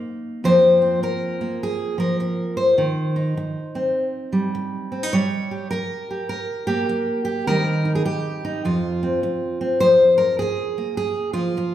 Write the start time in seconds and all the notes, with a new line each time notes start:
Already playing: A#3 D#4
0.44 F2 F3 A#3 C4 C5
0.82 C4
1.03 A#4, muted steel-string acoustic guitar stroke
1.41 A#3
1.63 G#4
1.98 F3 A#4
2.20 muted steel-string acoustic guitar stroke
2.57 C5
2.78 D#3
3.16 D#4
3.37 muted steel-string acoustic guitar stroke
3.75 C4
4.32 G3
4.55 muted steel-string acoustic guitar stroke
4.92 C4
5.03 D#4
5.13 G3 C#5
5.51 G4
5.71 A#4, muted steel-string acoustic guitar stroke
6.11 G4
6.29 A#4
6.67 A#3 G4
6.89 muted steel-string acoustic guitar stroke
7.25 G4
7.47 D#3 G3 C4 D#4 A#4
7.85 D#4
7.95 G#4
8.05 G4, muted steel-string acoustic guitar stroke
8.45 D#4
8.65 F2 F4
9.03 C4
9.23 muted steel-string acoustic guitar stroke
9.61 C4
9.80 F2 C5
10.18 A#4
10.39 G#4, muted steel-string acoustic guitar stroke
10.78 A#3
10.97 G#4
11.33 F3 F4
11.57 muted steel-string acoustic guitar stroke